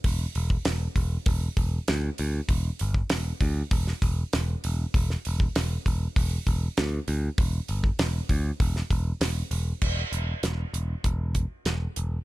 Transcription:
<<
  \new Staff \with { instrumentName = "Picked electric bass" } { \clef bass \time 4/4 \key e \minor \tempo 4 = 98 e,,8 e,,8 e,,8 e,,8 e,,8 e,,8 d,8 d,8 | e,,8 g,,8 e,,8 d,8 e,,8 e,,8 e,,8 e,,8 | e,,8 e,,8 e,,8 e,,8 e,,8 e,,8 d,8 d,8 | e,,8 g,,8 e,,8 d,8 e,,8 e,,8 e,,8 e,,8 |
e,,8 e,,8 e,,8 e,,8 e,,4 e,,8 e,,8 | }
  \new DrumStaff \with { instrumentName = "Drums" } \drummode { \time 4/4 <hho bd>8 hho16 bd16 <hho sn>8 <hho bd>8 <hho bd>8 <hho bd>8 <hho sn>8 hho8 | <hho bd>8 hho16 bd16 <hho sn>8 <hho bd>8 <hho bd>16 sn16 <hho bd>8 <hho sn>8 hho8 | <hho bd>16 sn16 hho16 bd16 <hho sn>8 <hho bd>8 <hho bd>8 <hho bd>8 <hho sn>8 hho8 | <hho bd>8 hho16 bd16 <hho sn>8 <hho bd>8 <hho bd>16 sn16 <hho bd>8 <hho sn>8 hho8 |
<cymc bd>8 hh8 <hh sn>8 hh8 <hh bd>8 <hh bd>8 <hh sn>8 hh8 | }
>>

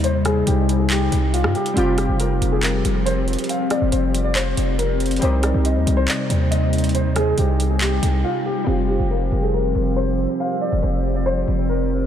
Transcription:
<<
  \new Staff \with { instrumentName = "Grand piano" } { \time 4/4 \key c \minor \tempo 4 = 139 c''8 aes'8 g'8. aes'16 g'4 f'8 g'8 | f'8 g'8 bes'8. aes'16 bes'4 c''4 | f''8 d''8 c''8. d''16 c''4 bes'4 | c''8 d''8 ees''8. c''16 d''4 ees''4 |
c''8 aes'8 g'8. aes'16 g'4 f'8 g'8 | f'8 g'8 bes'8. aes'16 bes'4 c''4 | f''8 d''8 c''8. d''16 c''4 bes'4 | }
  \new Staff \with { instrumentName = "Synth keys" } { \time 4/4 \key c \minor r1 | <g c' f' g'>1~ | <g c' f' g'>1 | <g c' ees' g'>1~ |
<g c' ees' g'>1 | <g c' f' g'>1~ | <g c' f' g'>1 | }
  \new Staff \with { instrumentName = "Ambient pad" } { \time 4/4 \key c \minor <c g ees'>1 | <f c' g'>1~ | <f c' g'>1 | <c g ees'>1~ |
<c g ees'>1 | <f c' g'>1~ | <f c' g'>1 | }
  \new Staff \with { instrumentName = "808-style bass" } { \clef bass \time 4/4 \key c \minor ees,4 c,4. c,8. g,16 r8 | f,,8. f,,8. f,,4 f,,4~ f,,16 r16 | r8. f,,16 f,,4. f,,4. | c,8. c,8 ees,16 c,8 r8 ees,4.~ |
ees,4 c,4. c,8 r4 | f,,8. f,,8. f,,4 f,,4~ f,,16 r16 | r8. f,,16 f,,4. f,,4. | }
  \new DrumStaff \with { instrumentName = "Drums" } \drummode { \time 4/4 hh8 <hh ss>8 hh8 hh8 <hc hh>8 hh8 hh16 ss16 hh16 hh16 | hh8 <hh ss>8 hh8 hh8 <hc hh>8 hh8 hh8 hh32 hh32 hh32 hh32 | hh8 <hh ss>8 hh8 hh8 <hc hh>8 hh8 hh8 hh32 hh32 hh32 hh32 | hh8 <hh ss>8 hh8 hh8 <hc hh>8 hh8 hh8 hh32 hh32 hh32 hh32 |
hh8 <hh ss>8 hh8 hh8 <hc hh>8 hh8 r4 | r4 r4 r4 r4 | r4 r4 r4 r4 | }
>>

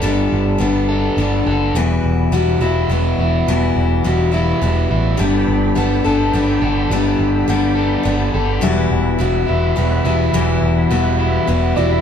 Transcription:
<<
  \new Staff \with { instrumentName = "Tonewheel organ" } { \time 3/4 \key e \minor \tempo 4 = 105 << { r2. | r2. | r2. | b''2.~ |
b''2.~ | b''2.~ | b''2. | } \\ { r2. | r2. | r2. | <a' d'' g''>2.~ |
<a' d'' g''>2. | <e'' fis''>2.~ | <e'' fis''>2. | } >> }
  \new Staff \with { instrumentName = "Grand piano" } { \time 3/4 \key e \minor r2. | r2. | r2. | r2. |
r2. | r2. | r2 r8 d''16 e''16 | }
  \new Staff \with { instrumentName = "Overdriven electric guitar" } { \time 3/4 \key e \minor <g b d' a'>4 b8 a'8 d'8 a'8 | e,4 fis'8 e'8 b8 e'8 | e,4 fis'8 e'8 b8 e'8 | g4 b8 a'8 d'8 a'8 |
g4 b8 a'8 d'8 a'8 | e,4 fis'8 e'8 b8 e'8 | e,4 fis'8 e'8 b8 e'8 | }
  \new Staff \with { instrumentName = "Steel-string acoustic guitar" } { \time 3/4 \key e \minor <g b d' a'>4 <g b d' a'>4 <g b d' a'>4 | <e, e g b e' fis'>4 <g b e' fis'>8 <g b e' fis'>8 <g b e' fis'>4 | <e, e g b e' fis'>4 <g b e' fis'>8 <g b e' fis'>8 <g b e' fis'>4 | <g b d' a'>4 <g b d' a'>8 <b d' a'>8 <g b d' a'>4 |
<g b d' a'>4 <g b d' a'>4 <g b d' a'>4 | <e, e g b e' fis'>4 <g b e' fis'>4 <g b e' fis'>8 <g b e' fis'>8 | <e, e g b e' fis'>4 <g b e' fis'>4 <g b e' fis'>8 <g b e' fis'>8 | }
  \new Staff \with { instrumentName = "Picked electric bass" } { \clef bass \time 3/4 \key e \minor g,,8 g,,8 g,,4 g,,8 fis,,8 | e,,8 e,,8 e,,8 e,,8 e,,8 e,,8 | e,,8 e,,8 e,,4 e,,8 a,,8 | g,,8 g,,8 g,,8 g,,8 g,,8 g,,8 |
g,,8 g,,8 g,,4 g,,8 g,,8 | e,,8 e,,8 e,,8 e,,8 e,,8 e,,8 | e,,8 e,,8 e,,4 e,,8 e,,8 | }
>>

